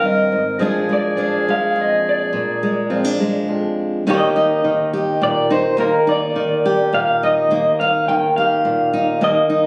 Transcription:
Already playing: steel-string acoustic guitar D#3 C4 D#4, clarinet A#4
0.02 steel-string acoustic guitar G2, clean electric guitar D#5
0.32 steel-string acoustic guitar G#2
0.59 steel-string acoustic guitar A#2 F3 G#3 D4 G#4, clarinet G#4
0.89 steel-string acoustic guitar G#3, clean electric guitar D5
1.17 steel-string acoustic guitar F3 D4
1.48 steel-string acoustic guitar G#3, clean electric guitar F5
1.76 steel-string acoustic guitar F2
1.81 clean electric guitar D#5
2.09 clean electric guitar D5
2.33 steel-string acoustic guitar A#2
2.63 steel-string acoustic guitar G#3
2.90 steel-string acoustic guitar F3 C4
3.04 steel-string acoustic guitar D4
3.20 steel-string acoustic guitar G#3
3.48 steel-string acoustic guitar F2
4.07 steel-string acoustic guitar D#2 D#3 A#3 D#4 G4, clean electric guitar D#5
4.36 steel-string acoustic guitar D#4
4.64 steel-string acoustic guitar D#3
4.93 steel-string acoustic guitar G4
5.21 steel-string acoustic guitar A#2, clean electric guitar D5
5.50 steel-string acoustic guitar D#4, clean electric guitar C5
5.77 steel-string acoustic guitar D#2 A#3, clean electric guitar A#4
6.07 steel-string acoustic guitar D#4, clean electric guitar D5
6.36 steel-string acoustic guitar D#3
6.66 steel-string acoustic guitar G4
6.93 steel-string acoustic guitar A#2, clean electric guitar F5
7.23 steel-string acoustic guitar D#4, clean electric guitar D#5
7.51 steel-string acoustic guitar D#2 A#3
7.80 steel-string acoustic guitar D#4, clean electric guitar F5
8.08 steel-string acoustic guitar D#3, clean electric guitar G5
8.36 steel-string acoustic guitar G4, clean electric guitar F5
8.65 steel-string acoustic guitar A#2
8.93 steel-string acoustic guitar D#4
9.21 steel-string acoustic guitar D#2 A#3, clean electric guitar D#5
9.50 steel-string acoustic guitar D#4

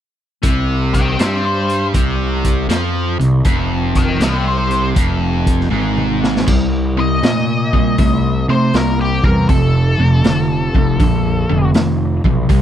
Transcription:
0.43 picked electric bass C2, overdriven electric guitar C3, kick, closed hi-hat
0.94 lead electric guitar A#4 G5, kick, closed hi-hat
1.19 picked electric bass G2, overdriven electric guitar G3, lead electric guitar G4 E5, snare, closed hi-hat
1.45 lead electric guitar C5
1.69 closed hi-hat
1.94 picked electric bass C2, overdriven electric guitar C3, kick, closed hi-hat
2.44 kick, closed hi-hat
2.68 picked electric bass F2, overdriven electric guitar F3, snare, closed hi-hat
3.20 picked electric bass C2, overdriven electric guitar C3, closed hi-hat
3.44 picked electric bass F1, overdriven electric guitar F2, kick, closed hi-hat
3.95 lead electric guitar D#5 G5, kick, closed hi-hat
4.19 picked electric bass C2, overdriven electric guitar C3, lead electric guitar G4 D#5, snare, closed hi-hat
4.48 lead electric guitar C5
4.71 closed hi-hat
4.95 picked electric bass F1, overdriven electric guitar F2, kick, closed hi-hat
5.47 kick, closed hi-hat
5.60 snare
5.71 picked electric bass G#1, overdriven electric guitar G#2, high tom
5.97 mid tom
6.24 snare
6.36 snare
6.47 picked electric bass C2, overdriven electric guitar C3 G3, kick, crash
6.97 overdriven electric guitar C3 G3, lead electric guitar D#5
7.23 picked electric bass A#2, overdriven electric guitar C3 A3, snare, open hi-hat
7.73 overdriven electric guitar C3 G3, kick
7.98 picked electric bass C2, overdriven electric guitar C3 A3, kick, open hi-hat
8.48 picked electric bass C3, overdriven electric guitar C3 A3, lead electric guitar C5
8.73 picked electric bass C2, overdriven electric guitar C3 A#3, lead electric guitar A#4, snare, open hi-hat
9.01 lead electric guitar G4
9.23 picked electric bass E2, overdriven electric guitar C3 G3, lead electric guitar A#4, kick
9.49 picked electric bass F1, overdriven electric guitar F2 C3, lead electric guitar A4, kick, open hi-hat
9.98 picked electric bass F1, overdriven electric guitar F2 C3
10.24 picked electric bass F1, overdriven electric guitar F2 D3, snare, open hi-hat
10.74 picked electric bass F1, overdriven electric guitar F2 C3, kick
11.00 picked electric bass A#1, overdriven electric guitar F2 D3, kick, open hi-hat
11.49 picked electric bass F1, overdriven electric guitar F2 D3
11.74 picked electric bass F1, overdriven electric guitar F2 D#3, snare, open hi-hat
12.24 picked electric bass B1, overdriven electric guitar F2 C3, kick
12.49 picked electric bass C2, overdriven electric guitar C3 G3, kick, open hi-hat

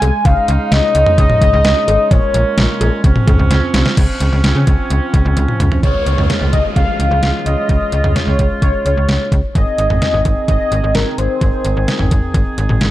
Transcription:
Already playing: woodwind section G#3, soft synth lead G#5
0.02 fm bass C2, closed hi-hat, cowbell
0.25 fm bass C#2, woodwind section C#3 D#4, soft synth lead F5, kick, closed hi-hat
0.48 fm bass C#2, closed hi-hat
0.72 fm bass C#2, soft synth lead D#5, snare, closed hi-hat
0.95 fm bass C#2, closed hi-hat
1.06 mid tom
1.18 fm bass C#2, soft synth lead D#5, kick, closed hi-hat
1.30 mid tom
1.42 fm bass C#2, soft synth lead D#5, kick, closed hi-hat
1.53 fm bass C#2
1.65 fm bass C#2, snare, closed hi-hat
1.88 fm bass G#1, closed hi-hat, cowbell
2.11 fm bass A#1, woodwind section A#2 C#4, soft synth lead C#5, kick, closed hi-hat
2.34 fm bass A#1, closed hi-hat
2.58 fm bass A#1, snare, closed hi-hat
2.81 fm bass A#1, closed hi-hat, cowbell
3.04 fm bass C#2, woodwind section F3 C4 C#4, kick, closed hi-hat
3.16 mid tom
3.28 fm bass C#2, kick, closed hi-hat, mid tom, cowbell
3.39 fm bass C#2
3.51 fm bass C#2, snare, closed hi-hat
3.74 fm bass C2, snare, closed hi-hat
3.86 snare
3.97 fm bass C#2, woodwind section F3 C4 C#4, kick, closed hi-hat, crash
4.20 fm bass C#2, closed hi-hat
4.32 fm bass C#2
4.44 fm bass C#2, snare, closed hi-hat
4.55 fm bass C#3
4.67 fm bass C#2, kick, closed hi-hat
4.90 fm bass C#2, closed hi-hat
5.14 fm bass C#2, kick, closed hi-hat
5.25 fm bass C#2
5.37 fm bass C#2, closed hi-hat, high tom
5.48 mid tom
5.60 fm bass C#2, closed hi-hat, mid tom
5.72 floor tom
5.83 fm bass C#2, woodwind section C#3 G#3 F4, soft synth lead C#5, kick, closed hi-hat, downlifter
6.06 fm bass C#2, closed hi-hat
6.18 fm bass C#2, mid tom
6.30 snare, closed hi-hat
6.41 fm bass C#2
6.53 fm bass C#2, soft synth lead D#5, kick, closed hi-hat
6.76 fm bass C#2, soft synth lead F5, kick, closed hi-hat
7.00 fm bass C#2, closed hi-hat
7.11 fm bass C#2
7.23 fm bass C#2, soft synth lead F5, snare, closed hi-hat
7.46 fm bass C#2, soft synth lead D#5, closed hi-hat
7.69 fm bass C#2, kick, closed hi-hat
7.92 fm bass C#2, closed hi-hat
8.04 fm bass C#2, mid tom
8.16 soft synth lead C#5, snare, closed hi-hat
8.27 fm bass C#2
8.39 fm bass C#2, kick, closed hi-hat
8.62 fm bass C#2, soft synth lead C#5, kick, closed hi-hat
8.86 fm bass C#2, soft synth lead C#5, closed hi-hat
8.97 fm bass C#2
9.09 fm bass C#2, snare, closed hi-hat
9.32 fm bass C#2, kick, closed hi-hat
9.55 fm bass G#1, woodwind section D#3 C4 G#4, soft synth lead D#5, kick, closed hi-hat
9.78 fm bass G#1, closed hi-hat
9.90 fm bass G#1, mid tom
10.02 snare, closed hi-hat
10.14 fm bass G#1
10.25 fm bass G#1, kick, closed hi-hat
10.48 fm bass G#1, soft synth lead D#5, kick, closed hi-hat
10.72 fm bass G#1, closed hi-hat
10.84 fm bass G#1
10.95 fm bass G#1, soft synth lead A#4, snare, closed hi-hat
11.18 fm bass G#1, soft synth lead C5, closed hi-hat
11.41 fm bass G#1, kick, closed hi-hat
11.65 fm bass G#1, closed hi-hat
11.77 fm bass G#1
11.88 snare, closed hi-hat
11.99 fm bass G#1, mid tom
12.11 fm bass G#1, kick, closed hi-hat
12.34 fm bass G#1, kick, closed hi-hat
12.58 fm bass G#1, closed hi-hat
12.69 fm bass G#1, mid tom
12.81 fm bass G#1, snare, closed hi-hat

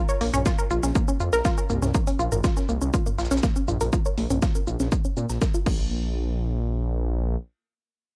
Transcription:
0.09 synth pluck C#5, shaker
0.21 detuned saw bass A#1, synth pluck A#3, open hi-hat
0.34 detuned saw bass A#1, synth pluck C#4, closed hi-hat, mid tom, shaker
0.46 synth pluck F4, kick, snare, shaker
0.59 synth pluck A#4, shaker
0.71 detuned saw bass A#1, synth pluck F4, shaker
0.83 detuned saw bass A#1, synth pluck C#4, snare, shaker
0.95 synth pluck A#3, kick, shaker
1.08 synth pluck C#4, shaker
1.20 detuned saw bass F2, synth pluck F4, shaker
1.33 detuned saw bass A#1, synth pluck A#4, snare, shaker
1.45 synth pluck F4, kick, snare, shaker
1.58 synth pluck C#4, shaker
1.70 detuned saw bass C2, synth pluck A#3, mid tom, shaker
1.82 detuned saw bass C2, synth pluck C#4, snare, mid tom, shaker
1.95 synth pluck A#3, kick, shaker
2.07 synth pluck C#4, closed hi-hat, shaker
2.19 detuned saw bass A#1, synth pluck F4, shaker
2.32 detuned saw bass G#1, synth pluck A#4, mid tom, shaker
2.44 synth pluck F4, kick, snare, shaker
2.57 synth pluck C#4, snare, shaker
2.69 detuned saw bass C2, synth pluck A#3, shaker
2.82 detuned saw bass C2, synth pluck C#4, shaker
2.94 synth pluck F4, kick, shaker
3.06 synth pluck A#3, mid tom, shaker
3.18 detuned saw bass A#1, synth pluck F4, snare, shaker
3.25 snare, shaker
3.31 detuned saw bass A#1, synth pluck C#4, snare, shaker
3.37 snare, shaker
3.43 synth pluck A#3, kick, snare, shaker
3.56 synth pluck C#4, shaker
3.68 detuned saw bass A#1, synth pluck F4, mid tom, shaker
3.81 detuned saw bass A#1, synth pluck A#4, closed hi-hat, shaker
3.93 synth pluck F4, kick, shaker
4.05 synth pluck C#5, shaker
4.18 detuned saw bass A#1, synth pluck A#3, open hi-hat
4.30 detuned saw bass A#1, synth pluck C#4, closed hi-hat, mid tom, shaker
4.42 synth pluck F4, kick, snare, shaker
4.55 synth pluck A#4, shaker
4.67 detuned saw bass A#1, synth pluck F4, shaker
4.80 detuned saw bass A#1, synth pluck C#4, snare, shaker
4.92 synth pluck A#3, kick, shaker
5.05 synth pluck C#4, shaker
5.17 detuned saw bass A#2, synth pluck C#4, shaker
5.29 detuned saw bass A#1, synth pluck A#5, snare, shaker
5.42 synth pluck A#4, kick, snare, shaker
5.54 synth pluck F4, shaker
5.66 detuned saw bass A#1, synth pluck A#3, kick, crash

